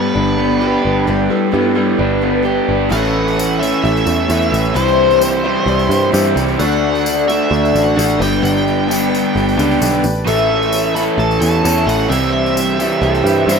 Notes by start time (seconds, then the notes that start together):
Already playing: G2 G3 B3 D4 G4 B4
0.14 G1 D4
0.37 B3 D4 G4 B4
0.61 G3 D4 G4 B4
0.83 G1 D4 G4 B4
1.06 G1 G2 G3 D4 G4 B4
1.30 G3 D4 E4 G4 A4 B4
1.52 G2 G3 B3 D4 E4 G4 A4 B4
1.75 G3 D4 E4 G4 A4 B4
1.99 G1 D4 B4
2.21 B3 D4 G4 B4
2.43 G3 D4 G4 B4
2.69 G1 D4
2.89 A1 A2 E3 A3 C#4 E4 A4 C#5 F#5, tambourine
3.05 tambourine
3.28 tambourine
3.35 A3 C#4 E4 C#5
3.39 tambourine
3.59 A2 E3 A3 C#4 E4 C#5 E5
3.63 tambourine
3.81 A1 A3 C#4 E4 C#5 E5, tambourine
3.97 tambourine
4.07 E2, tambourine
4.28 E2 A2 E3 A3 C#4 E4 C#5, tambourine
4.42 tambourine
4.52 A1 A3 C#4 E4 C#5, tambourine
4.65 tambourine
4.74 C2 C3 E3 G3 C4 E4 G4 C5, tambourine
4.88 tambourine
5.10 tambourine
5.21 G3 C4 E4 C5, tambourine
5.44 C3 E3 G3 C4 E4 C5
5.66 C2 G3 C4 E4 C5 D5, tambourine
5.79 tambourine
5.89 G2, tambourine
5.93 C5
6.11 G2 C3 E3 G3 C4 E4 C5, tambourine
6.26 tambourine
6.36 C2 G3 C4 E4 C5, tambourine
6.48 tambourine
6.57 D2 D3 A3 D4 F#4 A4 D5 F#5, tambourine
6.72 tambourine
6.95 tambourine
7.05 A3 D4 F#4 D5, tambourine
7.27 D3 A3 D4 F#4 D5 E5, tambourine
7.49 D2 A3 D4 F#4 D5, tambourine
7.65 tambourine
7.74 A1, tambourine
7.84 F#5
7.95 A1 D3 A3 D4 F#4 D5
7.99 tambourine
8.10 tambourine
8.18 G1 G2 D3 G3 B3 D4 G4 B4 G5, tambourine
8.34 tambourine
8.42 G1 G3 D4 G4 B4 G5, tambourine
8.57 tambourine
8.67 tambourine
8.87 G2 D3 G3 B3 D4 G4 B4, tambourine
9.09 D4 G4 B4
9.15 tambourine
9.33 G1 G3 D4 G4 B4
9.37 tambourine
9.49 tambourine
9.56 C#2 G2 D3 G3 B3 D4 G4, tambourine
9.71 tambourine
9.79 B1 G3 D4 G4 B4, tambourine
9.94 tambourine
10.03 A1 D4 G4 B4, tambourine
10.16 tambourine
10.25 A1 A2 E3 A3 C#4 E4 A4 C#5 E5, tambourine
10.39 tambourine
10.63 tambourine
10.72 A3 C#4 E4 C#5, tambourine
10.95 A2 E3 A3 C#4 E4 A4 C#5 B5, tambourine
11.18 A1 A3 C#4 E4 C#5 A5, tambourine
11.31 tambourine
11.41 E2 A5, tambourine
11.64 E2 A2 E3 A3 C#4 E4 A4 C#5, tambourine
11.78 tambourine
11.87 A1 A3 C#4 E4 C#5 F#5, tambourine
12.01 tambourine
12.09 C2 C3 E3 G3 C4 E4 G4 C5 E5, tambourine
12.24 tambourine
12.32 E5
12.46 tambourine
12.56 G3 C4 E4 C5, tambourine
12.79 C3 E3 G3 C4 E4 G4 C5, tambourine
13.01 C2 G3 C4 E4 A4 C5, tambourine
13.15 tambourine
13.24 G2 B4, tambourine
13.47 G2 C3 E3 G3 C4 E4 C5, tambourine
13.52 G4